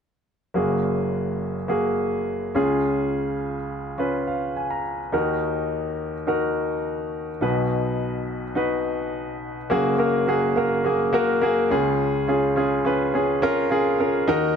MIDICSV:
0, 0, Header, 1, 2, 480
1, 0, Start_track
1, 0, Key_signature, 6, "major"
1, 0, Tempo, 572519
1, 463, Time_signature, 4, 2, 24, 8
1, 12209, End_track
2, 0, Start_track
2, 0, Title_t, "Grand piano"
2, 0, Program_c, 0, 0
2, 454, Note_on_c, 0, 58, 57
2, 460, Note_on_c, 0, 42, 52
2, 461, Note_on_c, 0, 30, 49
2, 461, Note_on_c, 0, 66, 55
2, 467, Note_on_c, 0, 68, 64
2, 631, Control_c, 0, 64, 127
2, 1305, Note_off_c, 0, 58, 0
2, 1308, Note_off_c, 0, 66, 0
2, 1311, Note_off_c, 0, 68, 0
2, 1410, Note_on_c, 0, 58, 65
2, 1417, Note_on_c, 0, 66, 54
2, 1421, Note_on_c, 0, 68, 69
2, 2107, Note_off_c, 0, 30, 0
2, 2107, Note_off_c, 0, 42, 0
2, 2131, Note_off_c, 0, 68, 0
2, 2135, Note_on_c, 0, 61, 69
2, 2136, Note_off_c, 0, 58, 0
2, 2139, Note_off_c, 0, 66, 0
2, 2139, Note_on_c, 0, 49, 54
2, 2140, Note_on_c, 0, 37, 53
2, 2142, Note_on_c, 0, 65, 63
2, 2144, Note_on_c, 0, 68, 78
2, 2152, Control_c, 0, 64, 0
2, 2321, Control_c, 0, 64, 127
2, 2985, Note_off_c, 0, 61, 0
2, 2988, Note_off_c, 0, 65, 0
2, 2989, Note_off_c, 0, 68, 0
2, 3336, Note_on_c, 0, 61, 61
2, 3342, Note_on_c, 0, 65, 58
2, 3349, Note_on_c, 0, 71, 67
2, 3582, Note_on_c, 0, 77, 52
2, 3805, Note_off_c, 0, 77, 0
2, 3827, Note_on_c, 0, 80, 50
2, 3936, Note_off_c, 0, 80, 0
2, 3945, Note_on_c, 0, 82, 52
2, 4026, Note_off_c, 0, 49, 0
2, 4027, Note_off_c, 0, 37, 0
2, 4185, Note_off_c, 0, 61, 0
2, 4188, Note_off_c, 0, 65, 0
2, 4191, Note_off_c, 0, 71, 0
2, 4278, Note_off_c, 0, 82, 0
2, 4296, Note_on_c, 0, 63, 60
2, 4300, Note_on_c, 0, 39, 56
2, 4301, Note_on_c, 0, 51, 56
2, 4301, Note_on_c, 0, 66, 59
2, 4307, Note_on_c, 0, 70, 73
2, 4313, Control_c, 0, 64, 0
2, 4455, Control_c, 0, 64, 127
2, 5145, Note_off_c, 0, 63, 0
2, 5148, Note_off_c, 0, 66, 0
2, 5150, Note_off_c, 0, 70, 0
2, 5256, Note_on_c, 0, 63, 60
2, 5261, Note_on_c, 0, 66, 62
2, 5267, Note_on_c, 0, 70, 75
2, 6105, Note_off_c, 0, 63, 0
2, 6107, Note_off_c, 0, 66, 0
2, 6110, Note_off_c, 0, 70, 0
2, 6187, Note_off_c, 0, 39, 0
2, 6187, Note_off_c, 0, 51, 0
2, 6212, Note_on_c, 0, 63, 65
2, 6218, Note_on_c, 0, 35, 59
2, 6219, Note_on_c, 0, 47, 60
2, 6220, Note_on_c, 0, 66, 59
2, 6225, Note_on_c, 0, 71, 73
2, 6232, Control_c, 0, 64, 0
2, 6395, Control_c, 0, 64, 127
2, 7063, Note_off_c, 0, 63, 0
2, 7067, Note_off_c, 0, 66, 0
2, 7069, Note_off_c, 0, 71, 0
2, 7171, Note_on_c, 0, 63, 67
2, 7176, Note_on_c, 0, 66, 60
2, 7184, Note_on_c, 0, 71, 74
2, 8022, Note_off_c, 0, 63, 0
2, 8025, Note_off_c, 0, 66, 0
2, 8029, Note_off_c, 0, 71, 0
2, 8105, Note_off_c, 0, 35, 0
2, 8106, Note_off_c, 0, 47, 0
2, 8131, Note_on_c, 0, 58, 86
2, 8137, Note_on_c, 0, 66, 80
2, 8138, Note_on_c, 0, 30, 56
2, 8139, Note_on_c, 0, 42, 57
2, 8144, Note_on_c, 0, 68, 91
2, 8149, Control_c, 0, 64, 0
2, 8312, Control_c, 0, 64, 127
2, 8347, Note_off_c, 0, 58, 0
2, 8350, Note_off_c, 0, 66, 0
2, 8354, Note_off_c, 0, 68, 0
2, 8368, Note_on_c, 0, 58, 70
2, 8374, Note_on_c, 0, 66, 63
2, 8380, Note_on_c, 0, 70, 77
2, 8586, Note_off_c, 0, 58, 0
2, 8588, Note_off_c, 0, 66, 0
2, 8592, Note_off_c, 0, 70, 0
2, 8610, Note_on_c, 0, 58, 66
2, 8616, Note_on_c, 0, 66, 69
2, 8624, Note_on_c, 0, 68, 84
2, 8827, Note_off_c, 0, 58, 0
2, 8830, Note_off_c, 0, 66, 0
2, 8833, Note_off_c, 0, 68, 0
2, 8853, Note_on_c, 0, 58, 69
2, 8859, Note_on_c, 0, 66, 60
2, 8865, Note_on_c, 0, 70, 78
2, 9068, Note_off_c, 0, 58, 0
2, 9071, Note_off_c, 0, 66, 0
2, 9074, Note_off_c, 0, 70, 0
2, 9092, Note_on_c, 0, 58, 73
2, 9097, Note_on_c, 0, 66, 62
2, 9103, Note_on_c, 0, 68, 78
2, 9307, Note_off_c, 0, 58, 0
2, 9310, Note_off_c, 0, 66, 0
2, 9313, Note_off_c, 0, 68, 0
2, 9328, Note_on_c, 0, 58, 94
2, 9335, Note_on_c, 0, 66, 85
2, 9342, Note_on_c, 0, 70, 96
2, 9545, Note_off_c, 0, 58, 0
2, 9549, Note_off_c, 0, 66, 0
2, 9552, Note_off_c, 0, 70, 0
2, 9571, Note_on_c, 0, 58, 87
2, 9576, Note_on_c, 0, 66, 76
2, 9582, Note_on_c, 0, 68, 92
2, 9784, Note_off_c, 0, 30, 0
2, 9785, Note_off_c, 0, 42, 0
2, 9787, Note_off_c, 0, 58, 0
2, 9789, Note_off_c, 0, 66, 0
2, 9792, Note_off_c, 0, 68, 0
2, 9811, Note_on_c, 0, 61, 78
2, 9815, Note_on_c, 0, 49, 61
2, 9815, Note_on_c, 0, 65, 66
2, 9817, Note_on_c, 0, 37, 67
2, 9820, Note_on_c, 0, 68, 90
2, 9830, Control_c, 0, 64, 0
2, 9979, Control_c, 0, 64, 127
2, 10238, Note_off_c, 0, 61, 0
2, 10240, Note_off_c, 0, 65, 0
2, 10243, Note_off_c, 0, 68, 0
2, 10292, Note_on_c, 0, 61, 69
2, 10299, Note_on_c, 0, 65, 64
2, 10304, Note_on_c, 0, 68, 75
2, 10507, Note_off_c, 0, 61, 0
2, 10510, Note_off_c, 0, 65, 0
2, 10513, Note_off_c, 0, 68, 0
2, 10531, Note_on_c, 0, 61, 73
2, 10537, Note_on_c, 0, 65, 70
2, 10543, Note_on_c, 0, 68, 78
2, 10746, Note_off_c, 0, 61, 0
2, 10750, Note_off_c, 0, 65, 0
2, 10752, Note_off_c, 0, 68, 0
2, 10771, Note_on_c, 0, 61, 75
2, 10776, Note_on_c, 0, 65, 67
2, 10784, Note_on_c, 0, 71, 79
2, 10986, Note_off_c, 0, 61, 0
2, 10989, Note_off_c, 0, 65, 0
2, 10993, Note_off_c, 0, 71, 0
2, 11014, Note_on_c, 0, 61, 68
2, 11017, Note_on_c, 0, 65, 64
2, 11025, Note_on_c, 0, 68, 73
2, 11228, Note_off_c, 0, 61, 0
2, 11229, Note_off_c, 0, 65, 0
2, 11233, Note_off_c, 0, 68, 0
2, 11252, Note_on_c, 0, 61, 95
2, 11259, Note_on_c, 0, 65, 89
2, 11262, Note_on_c, 0, 70, 105
2, 11467, Note_off_c, 0, 61, 0
2, 11470, Note_off_c, 0, 65, 0
2, 11471, Note_off_c, 0, 70, 0
2, 11485, Note_on_c, 0, 61, 80
2, 11492, Note_on_c, 0, 65, 78
2, 11500, Note_on_c, 0, 68, 94
2, 11702, Note_off_c, 0, 49, 0
2, 11703, Note_off_c, 0, 37, 0
2, 11703, Note_off_c, 0, 61, 0
2, 11707, Note_off_c, 0, 65, 0
2, 11710, Note_off_c, 0, 68, 0
2, 11728, Note_on_c, 0, 61, 75
2, 11735, Note_on_c, 0, 65, 66
2, 11741, Note_on_c, 0, 70, 84
2, 11944, Note_off_c, 0, 61, 0
2, 11948, Note_off_c, 0, 65, 0
2, 11951, Note_off_c, 0, 70, 0
2, 11968, Note_on_c, 0, 63, 99
2, 11973, Note_on_c, 0, 66, 83
2, 11975, Note_on_c, 0, 51, 63
2, 11976, Note_on_c, 0, 39, 60
2, 11980, Note_on_c, 0, 70, 105
2, 11989, Control_c, 0, 64, 0
2, 12146, Control_c, 0, 64, 127
2, 12185, Note_off_c, 0, 63, 0
2, 12187, Note_off_c, 0, 66, 0
2, 12190, Note_off_c, 0, 70, 0
2, 12209, Note_off_c, 0, 39, 0
2, 12209, Note_off_c, 0, 51, 0
2, 12209, End_track
0, 0, End_of_file